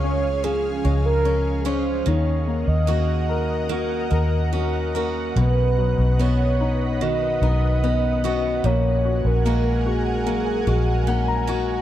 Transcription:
0.00 0.80 C#2 medium
0.00 2.06 C#3 medium
0.00 0.83 G#3 medium
0.00 0.04 C#4 medium
0.00 1.25 C#4 medium
0.00 2.03 C#4 medium
0.00 0.42 C#4 soft
0.00 1.65 F4 soft
0.00 2.03 G#4 medium
0.00 0.45 C#5 medium
0.00 2.03 F5 medium
0.44 2.05 F3 medium
0.44 0.83 C#4 soft
0.44 1.05 G#4 medium
0.84 2.02 C#2 medium
0.84 1.64 G#3 soft
0.84 1.24 C#4 soft
1.06 1.66 A#4 medium
1.25 1.64 C#4 medium
1.25 1.65 C#4 medium
1.65 2.14 G#3 medium
1.65 2.87 C#4 medium
1.65 2.05 C#4 medium
1.65 2.15 F4 medium
1.65 2.09 C5 medium
2.06 2.64 D#2 medium
2.06 5.56 D#3 medium
2.06 5.33 D#3 medium
2.06 5.33 A#4 medium
2.06 2.70 C#5 medium
2.06 5.33 D#5 medium
2.06 8.60 F#5 medium
2.47 4.07 A#3 soft
2.67 4.07 D#2 medium
2.67 3.50 D#5 medium
2.87 3.68 A#3 medium
2.87 4.52 C#4 soft
2.87 3.70 F#4 soft
2.87 4.96 F#4 medium
3.29 4.10 A#4 soft
3.69 4.09 A#3 medium
3.69 4.51 F#4 soft
4.11 5.32 D#2 medium
4.11 4.94 A#3 soft
4.11 4.93 A#4 soft
4.53 4.95 C#4 medium
4.53 5.34 F#4 soft
4.94 5.45 A#3 medium
4.94 6.19 C#4 soft
4.94 6.20 F#4 medium
4.94 5.35 A#4 soft
5.36 5.94 B1 medium
5.36 8.64 B2 medium
5.36 8.61 B2 medium
5.36 8.61 B4 medium
5.36 6.22 B4 medium
5.36 8.61 D#5 medium
5.78 7.38 F#3 soft
5.98 7.38 B1 medium
6.19 7.79 B3 medium
6.19 7.41 B3 soft
6.19 7.83 C#4 soft
6.19 8.25 F#4 medium
6.19 7.04 C#5 loud
6.60 7.41 D#4 soft
7.01 8.72 D#3 medium
7.01 8.23 F#4 medium
7.01 8.67 D#5 loud
7.42 8.60 B1 medium
7.42 8.23 B3 soft
7.42 8.61 D#4 soft
7.84 8.62 B3 medium
7.84 8.24 C#4 medium
8.24 8.72 B3 medium
8.24 9.46 C#4 medium
8.24 8.63 F#4 medium
8.24 9.47 F#4 medium
8.64 9.21 A#1 medium
8.64 11.82 A#2 medium
8.64 9.44 A#3 medium
8.64 11.82 A#4 medium
8.64 9.28 C#5 loud
8.64 11.82 F#5 medium
8.64 11.82 G#5 medium
9.05 9.85 F#4 soft
9.25 10.63 A#1 medium
9.25 9.89 A#4 medium
9.45 10.67 G#3 medium
9.45 10.25 A#3 medium
9.45 11.07 C#4 medium
9.45 11.47 F#4 medium
9.86 10.66 F#4 medium
9.86 11.48 G#4 medium
10.26 11.82 F#3 medium
10.26 11.06 A#3 soft
10.67 11.82 A#1 medium
10.67 11.47 G#3 soft
10.67 11.47 F#4 medium
11.07 11.82 A#3 medium
11.07 11.48 C#4 medium
11.07 11.26 F#5 medium
11.28 11.82 A#5 medium
11.47 11.82 G#3 medium
11.47 11.82 C#4 medium
11.47 11.82 F#4 medium

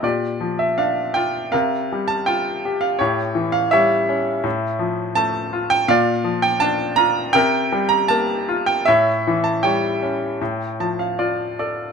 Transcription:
0.03 1.50 A#2 soft
0.03 1.50 G4 soft
0.03 0.63 D5 medium
0.40 1.50 F3 soft
0.59 0.79 E5 soft
0.78 1.51 D4 soft
0.78 1.17 F5 medium
1.14 1.52 F4 soft
1.14 1.50 G5 medium
1.52 2.96 C3 soft
1.52 2.95 A#4 soft
1.52 2.10 F5 medium
1.92 2.98 G3 soft
2.08 2.25 A5 medium
2.26 2.98 F4 soft
2.26 2.83 G5 medium
2.65 2.98 G4 soft
2.81 3.00 F5 medium
2.99 4.41 A2 medium
2.99 4.40 G4 soft
2.99 3.50 C#5 medium
3.35 4.41 E3 soft
3.52 3.72 F5 medium
3.71 4.43 G3 soft
3.71 5.13 C#5 medium
3.71 5.20 E5 medium
4.09 4.44 C#4 soft
4.44 5.85 A2 medium
4.79 5.85 F3 soft
5.15 5.87 A3 soft
5.15 5.72 A5 medium
5.53 5.88 F4 soft
5.70 5.89 G5 medium
5.88 7.30 A#2 medium
5.88 7.31 D5 medium
5.88 6.45 F5 medium
6.24 7.31 F3 soft
6.42 6.61 G5 medium
6.60 7.33 D4 medium
6.60 6.98 A5 medium
6.96 7.34 F4 medium
6.96 7.31 A#5 medium
7.33 8.84 C3 medium
7.33 8.83 A#4 medium
7.33 7.86 G5 medium
7.72 8.84 G3 soft
7.89 8.10 A#5 medium
8.08 8.85 A#3 soft
8.08 8.69 A5 medium
8.49 8.86 F4 soft
8.66 8.87 G5 medium
8.85 10.37 A2 medium
8.85 9.63 C#5 medium
8.85 9.46 E5 medium
9.27 10.38 E3 soft
9.44 9.64 A5 medium
9.63 10.38 G3 soft
9.63 11.56 C#5 soft
9.63 11.55 G5 medium
10.02 10.39 C#4 soft
10.41 11.92 A2 medium
10.80 11.92 F3 soft
10.80 10.98 A5 soft
10.99 11.18 F5 soft
11.19 11.92 F4 soft
11.19 11.56 D5 soft
11.59 11.92 A4 soft
11.59 11.92 D5 soft

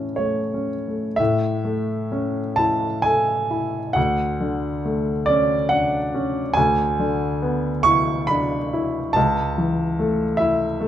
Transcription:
0.00 1.14 A2 soft
0.00 1.22 E3 soft
0.00 0.19 A3 soft
0.00 0.54 C#4 soft
0.00 1.22 E4 soft
0.00 0.68 A4 soft
0.16 0.74 A3 soft
0.16 1.18 C#5 medium
0.54 1.07 C#4 soft
0.88 1.19 A3 soft
1.16 3.92 A2 medium
1.16 2.57 E5 medium
1.65 2.40 A3 soft
2.12 2.87 C#4 soft
2.56 3.33 E4 soft
2.56 3.04 A5 medium
3.02 3.78 A4 soft
3.02 3.95 G#5 medium
3.51 3.96 E4 soft
3.93 6.53 D2 medium
3.93 5.28 F#5 medium
4.41 5.11 D3 soft
4.85 5.55 A3 soft
5.26 5.98 C#4 soft
5.26 5.71 D5 medium
5.69 6.40 D4 soft
5.69 6.55 F#5 medium
6.14 6.57 C#4 soft
6.54 9.12 D2 medium
6.54 7.85 G#5 medium
6.99 7.69 D3 soft
7.42 8.12 B3 soft
7.83 8.56 E4 soft
7.83 8.28 C#6 loud
8.27 8.99 D4 soft
8.27 9.14 B5 medium
8.73 9.16 E4 soft
9.13 10.88 C#2 medium
9.13 10.39 A5 medium
9.58 10.24 E3 soft
9.99 10.65 A3 medium
10.37 10.88 E4 medium
10.37 10.79 E5 medium
10.80 10.88 A3 medium

